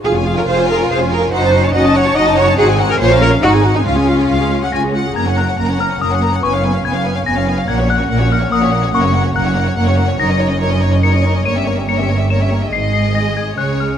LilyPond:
<<
  \new Staff \with { instrumentName = "Celesta" } { \time 3/4 \key des \major \tempo 4 = 142 r2. | r2. | r2. | r2 bes'''4 |
\key fis \major gis'''8 fis'''4 eis'''8 dis'''4 | cis'''4 gis'''4 ais'''4 | gis'''8 fis'''4 eis'''8 dis'''4 | cis'''4 fis'''4 r4 |
\key aes \mixolydian bes'''2 des''''4 | ees''''4 des''''4 e''''4 | c''''8 c''''8 bes'''8 aes'''8 ges'''8 f'''8 | }
  \new Staff \with { instrumentName = "Violin section" } { \time 3/4 \key des \major f''16 aes''16 f''16 aes''16 f''16 aes''16 f''16 aes''16 f''16 aes''16 f''16 aes''16 | ges''16 a''16 ges''16 a''16 ges''16 a''16 ges''16 a''16 ges''16 a''16 ges''16 a''16 | ges''16 aes''16 ges''16 aes''16 des''16 f''16 des''16 f''16 ges''16 aes''16 ges''16 aes''16 | f''16 aes''16 f''16 aes''16 f''8. ges''16 aes''8 ges''8 |
\key fis \major ais''16 fis''16 ais''16 fis''16 ais''16 fis''16 ais''16 fis''16 ais''16 fis''16 ais''16 fis''16 | gis''16 eis''16 gis''16 eis''16 gis''16 eis''16 gis''16 eis''16 gis''16 eis''16 gis''16 eis''16 | fis''16 cis''16 fis''16 cis''16 fis''16 cis''16 fis''16 cis''16 fis''16 cis''16 fis''16 cis''16 | fis''16 cis''16 fis''16 cis''16 fis''16 cis''16 fis''16 cis''16 fis''16 cis''16 fis''16 cis''16 |
\key aes \mixolydian des''16 ees''16 des''16 ees''16 des''16 ees''16 des''16 ees''16 des''16 ees''16 des''16 ees''16 | des''16 e''16 des''16 e''16 des''16 e''16 des''16 e''16 des''16 e''16 des''16 e''16 | ees''2 des''4 | }
  \new Staff \with { instrumentName = "Violin section" } { \time 3/4 \key des \major f'2. | ees'4 des'4 ees'4 | c'4 des'4 ees'4 | f'2~ f'8 r8 |
\key fis \major ais'16 cis''16 ais'16 cis''16 ais'16 cis''16 ais'16 cis''16 ais'16 cis''16 ais'16 cis''16 | b'16 cis''16 b'16 cis''16 b'16 cis''16 b'16 cis''16 b'16 cis''16 b'16 cis''16 | ais'16 fis'16 ais'16 fis'16 ais'16 fis'16 ais'16 fis'16 ais'16 fis'16 ais'16 fis'16 | ais'16 fis'16 ais'16 fis'16 ais'16 fis'16 ais'16 fis'16 ais'16 fis'16 ais'16 fis'16 |
\key aes \mixolydian bes'16 des''16 bes'16 des''16 bes'16 des''16 bes'16 des''16 bes'16 des''16 bes'16 des''16 | bes'16 g'16 bes'16 g'16 bes'16 g'16 bes'16 g'16 bes'16 g'16 bes'16 g'16 | aes'2 aes'4 | }
  \new Staff \with { instrumentName = "Cello section" } { \time 3/4 \key des \major aes'8. bes'16 c''8 bes'8 c''8 bes'8 | c''8. des''16 ees''8 des''8 ees''8 des''8 | aes'8. bes'16 c''8 bes'8 ges'8. ees'16 | des'2~ des'8 r8 |
\key fis \major fis,4 fis,4 fis,4 | fis,4 fis,4 fis,4 | ais,4 ais,4 ais,4 | fis,4 fis,4 fis,4 |
\key aes \mixolydian ges,2. | g,2. | aes,2 des4 | }
  \new Staff \with { instrumentName = "Viola section" } { \time 3/4 \key des \major <f' aes'>16 <des' f'>16 <f' aes'>16 <des' f'>16 <f' aes'>16 <des' f'>16 <f' aes'>16 <des' f'>16 <f' aes'>16 <des' f'>16 <f' aes'>16 <des' f'>16 | <ees' ges'>16 <des' ees'>16 <ees' ges'>16 <des' ees'>16 <ees' ges'>16 <des' ees'>16 <ees' ges'>16 <des' ees'>16 <ees' ges'>16 <des' ees'>16 <ees' ges'>16 <des' ees'>16 | <ees' ges'>16 <c' aes'>16 <ees' ges'>16 <c' aes'>16 <bes f'>16 <des' bes'>16 <bes f'>16 <des' bes'>16 <ees' ges'>16 <c' aes'>16 <ees' ges'>16 <c' aes'>16 | <aes f'>16 <des' aes'>16 <aes f'>16 <des' aes'>16 <aes f'>16 <des' aes'>16 <aes f'>16 <des' aes'>16 <aes f'>16 <des' aes'>16 <aes f'>16 <des' aes'>16 |
\key fis \major ais16 cis'16 ais16 cis'16 ais16 cis'16 ais16 cis'16 ais16 cis'16 ais16 cis'16 | b16 cis'16 b16 cis'16 b16 cis'16 b16 cis'16 b16 cis'16 b16 cis'16 | ais16 cis'16 ais16 cis'16 ais16 cis'16 ais16 cis'16 ais16 cis'16 ais16 cis'16 | ais16 cis'16 ais16 cis'16 ais16 cis'16 ais16 cis'16 ais16 cis'16 ais16 cis'16 |
\key aes \mixolydian ees'16 des'16 ees'16 des'16 ees'16 des'16 ees'16 des'16 ees'16 des'16 ees'16 des'16 | bes16 des'16 bes16 des'16 bes16 des'16 bes16 des'16 bes16 des'16 bes16 des'16 | aes2 aes4 | }
  \new Staff \with { instrumentName = "Double bass section" } { \clef bass \time 3/4 \key des \major f,,4 f,,4 f,,4 | ges,,4 ges,,4 ges,,4 | aes,,4 bes,,4 aes,,4 | des,4 des,4 des,4 |
\key fis \major fis,,4 fis,,4 fis,,4 | fis,,4 fis,,4 fis,,4 | ais,,4 ais,,4 ais,,4 | fis,,4 fis,,4 fis,,4 |
\key aes \mixolydian ges,,2. | g,,2. | aes,,2 des,4 | }
>>